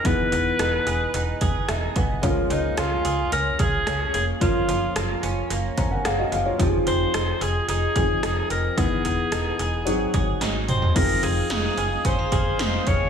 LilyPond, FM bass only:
\new Staff \with { instrumentName = "FM bass" } { \clef bass \time 4/4 \key f \phrygian \tempo 4 = 110 e,,8 e,,8 e,,8 e,,8 e,,8 e,,8 e,,8 b,,8 | des,8 des,8 des,8 des,8 des,8 des,8 des,8 f,,8 | ges,,8 ges,,8 ges,,8 ges,,8 ges,,8 ges,,8 ges,,8 ges,,8 | f,,8 f,,8 f,,8 f,,8 f,,8 f,,8 f,,8 f,,8 |
e,,8 e,,8 e,,8 e,,8 aes,,8 aes,,8 aes,,8 ges,,8 | f,,8 f,,8 f,,8 ges,,8 f,,8 f,,8 f,,8 f,,8 | }